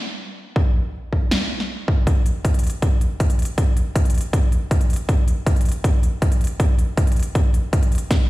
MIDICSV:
0, 0, Header, 1, 2, 480
1, 0, Start_track
1, 0, Tempo, 377358
1, 712, Time_signature, 4, 2, 24, 8
1, 10554, End_track
2, 0, Start_track
2, 0, Title_t, "Drums"
2, 712, Note_on_c, 9, 36, 103
2, 839, Note_off_c, 9, 36, 0
2, 1432, Note_on_c, 9, 36, 53
2, 1559, Note_off_c, 9, 36, 0
2, 1671, Note_on_c, 9, 38, 101
2, 1799, Note_off_c, 9, 38, 0
2, 2036, Note_on_c, 9, 38, 32
2, 2164, Note_off_c, 9, 38, 0
2, 2392, Note_on_c, 9, 36, 99
2, 2519, Note_off_c, 9, 36, 0
2, 2632, Note_on_c, 9, 36, 98
2, 2632, Note_on_c, 9, 42, 76
2, 2759, Note_off_c, 9, 36, 0
2, 2759, Note_off_c, 9, 42, 0
2, 2872, Note_on_c, 9, 42, 65
2, 2999, Note_off_c, 9, 42, 0
2, 3111, Note_on_c, 9, 42, 80
2, 3112, Note_on_c, 9, 36, 91
2, 3235, Note_off_c, 9, 42, 0
2, 3235, Note_on_c, 9, 42, 50
2, 3239, Note_off_c, 9, 36, 0
2, 3293, Note_off_c, 9, 42, 0
2, 3293, Note_on_c, 9, 42, 64
2, 3351, Note_off_c, 9, 42, 0
2, 3351, Note_on_c, 9, 42, 48
2, 3392, Note_off_c, 9, 42, 0
2, 3392, Note_on_c, 9, 42, 67
2, 3431, Note_off_c, 9, 42, 0
2, 3431, Note_on_c, 9, 42, 82
2, 3558, Note_off_c, 9, 42, 0
2, 3591, Note_on_c, 9, 36, 91
2, 3591, Note_on_c, 9, 42, 78
2, 3718, Note_off_c, 9, 42, 0
2, 3719, Note_off_c, 9, 36, 0
2, 3831, Note_on_c, 9, 42, 61
2, 3958, Note_off_c, 9, 42, 0
2, 4071, Note_on_c, 9, 36, 90
2, 4071, Note_on_c, 9, 42, 76
2, 4196, Note_off_c, 9, 42, 0
2, 4196, Note_on_c, 9, 42, 61
2, 4198, Note_off_c, 9, 36, 0
2, 4312, Note_off_c, 9, 42, 0
2, 4312, Note_on_c, 9, 42, 51
2, 4353, Note_off_c, 9, 42, 0
2, 4353, Note_on_c, 9, 42, 65
2, 4392, Note_off_c, 9, 42, 0
2, 4392, Note_on_c, 9, 42, 81
2, 4519, Note_off_c, 9, 42, 0
2, 4551, Note_on_c, 9, 36, 94
2, 4551, Note_on_c, 9, 42, 77
2, 4678, Note_off_c, 9, 36, 0
2, 4679, Note_off_c, 9, 42, 0
2, 4791, Note_on_c, 9, 42, 67
2, 4918, Note_off_c, 9, 42, 0
2, 5031, Note_on_c, 9, 36, 99
2, 5031, Note_on_c, 9, 42, 81
2, 5156, Note_off_c, 9, 42, 0
2, 5156, Note_on_c, 9, 42, 47
2, 5158, Note_off_c, 9, 36, 0
2, 5213, Note_off_c, 9, 42, 0
2, 5213, Note_on_c, 9, 42, 67
2, 5271, Note_off_c, 9, 42, 0
2, 5271, Note_on_c, 9, 42, 49
2, 5313, Note_off_c, 9, 42, 0
2, 5313, Note_on_c, 9, 42, 62
2, 5352, Note_off_c, 9, 42, 0
2, 5352, Note_on_c, 9, 42, 78
2, 5479, Note_off_c, 9, 42, 0
2, 5511, Note_on_c, 9, 36, 93
2, 5512, Note_on_c, 9, 42, 75
2, 5638, Note_off_c, 9, 36, 0
2, 5639, Note_off_c, 9, 42, 0
2, 5752, Note_on_c, 9, 42, 59
2, 5879, Note_off_c, 9, 42, 0
2, 5991, Note_on_c, 9, 36, 94
2, 5991, Note_on_c, 9, 42, 72
2, 6116, Note_off_c, 9, 42, 0
2, 6116, Note_on_c, 9, 42, 60
2, 6118, Note_off_c, 9, 36, 0
2, 6232, Note_off_c, 9, 42, 0
2, 6232, Note_on_c, 9, 42, 49
2, 6273, Note_off_c, 9, 42, 0
2, 6273, Note_on_c, 9, 42, 63
2, 6312, Note_off_c, 9, 42, 0
2, 6312, Note_on_c, 9, 42, 77
2, 6440, Note_off_c, 9, 42, 0
2, 6471, Note_on_c, 9, 36, 95
2, 6472, Note_on_c, 9, 42, 72
2, 6598, Note_off_c, 9, 36, 0
2, 6600, Note_off_c, 9, 42, 0
2, 6712, Note_on_c, 9, 42, 63
2, 6839, Note_off_c, 9, 42, 0
2, 6951, Note_on_c, 9, 36, 101
2, 6952, Note_on_c, 9, 42, 76
2, 7077, Note_off_c, 9, 42, 0
2, 7077, Note_on_c, 9, 42, 46
2, 7079, Note_off_c, 9, 36, 0
2, 7133, Note_off_c, 9, 42, 0
2, 7133, Note_on_c, 9, 42, 61
2, 7192, Note_off_c, 9, 42, 0
2, 7192, Note_on_c, 9, 42, 47
2, 7233, Note_off_c, 9, 42, 0
2, 7233, Note_on_c, 9, 42, 60
2, 7271, Note_off_c, 9, 42, 0
2, 7271, Note_on_c, 9, 42, 77
2, 7398, Note_off_c, 9, 42, 0
2, 7431, Note_on_c, 9, 36, 98
2, 7432, Note_on_c, 9, 42, 72
2, 7558, Note_off_c, 9, 36, 0
2, 7559, Note_off_c, 9, 42, 0
2, 7672, Note_on_c, 9, 42, 59
2, 7799, Note_off_c, 9, 42, 0
2, 7911, Note_on_c, 9, 36, 90
2, 7911, Note_on_c, 9, 42, 71
2, 8036, Note_off_c, 9, 42, 0
2, 8036, Note_on_c, 9, 42, 58
2, 8038, Note_off_c, 9, 36, 0
2, 8151, Note_off_c, 9, 42, 0
2, 8151, Note_on_c, 9, 42, 48
2, 8192, Note_off_c, 9, 42, 0
2, 8192, Note_on_c, 9, 42, 62
2, 8231, Note_off_c, 9, 42, 0
2, 8231, Note_on_c, 9, 42, 77
2, 8359, Note_off_c, 9, 42, 0
2, 8391, Note_on_c, 9, 36, 96
2, 8391, Note_on_c, 9, 42, 72
2, 8519, Note_off_c, 9, 36, 0
2, 8519, Note_off_c, 9, 42, 0
2, 8631, Note_on_c, 9, 42, 59
2, 8758, Note_off_c, 9, 42, 0
2, 8871, Note_on_c, 9, 36, 100
2, 8871, Note_on_c, 9, 42, 74
2, 8996, Note_off_c, 9, 42, 0
2, 8996, Note_on_c, 9, 42, 47
2, 8999, Note_off_c, 9, 36, 0
2, 9053, Note_off_c, 9, 42, 0
2, 9053, Note_on_c, 9, 42, 58
2, 9112, Note_off_c, 9, 42, 0
2, 9112, Note_on_c, 9, 42, 48
2, 9152, Note_off_c, 9, 42, 0
2, 9152, Note_on_c, 9, 42, 59
2, 9191, Note_off_c, 9, 42, 0
2, 9191, Note_on_c, 9, 42, 76
2, 9319, Note_off_c, 9, 42, 0
2, 9351, Note_on_c, 9, 36, 94
2, 9351, Note_on_c, 9, 42, 70
2, 9478, Note_off_c, 9, 36, 0
2, 9478, Note_off_c, 9, 42, 0
2, 9591, Note_on_c, 9, 42, 58
2, 9718, Note_off_c, 9, 42, 0
2, 9831, Note_on_c, 9, 36, 97
2, 9831, Note_on_c, 9, 42, 71
2, 9956, Note_off_c, 9, 42, 0
2, 9956, Note_on_c, 9, 42, 60
2, 9959, Note_off_c, 9, 36, 0
2, 10072, Note_off_c, 9, 42, 0
2, 10072, Note_on_c, 9, 42, 46
2, 10112, Note_off_c, 9, 42, 0
2, 10112, Note_on_c, 9, 42, 60
2, 10151, Note_off_c, 9, 42, 0
2, 10151, Note_on_c, 9, 42, 76
2, 10278, Note_off_c, 9, 42, 0
2, 10311, Note_on_c, 9, 36, 98
2, 10311, Note_on_c, 9, 38, 49
2, 10311, Note_on_c, 9, 42, 72
2, 10438, Note_off_c, 9, 38, 0
2, 10438, Note_off_c, 9, 42, 0
2, 10439, Note_off_c, 9, 36, 0
2, 10554, End_track
0, 0, End_of_file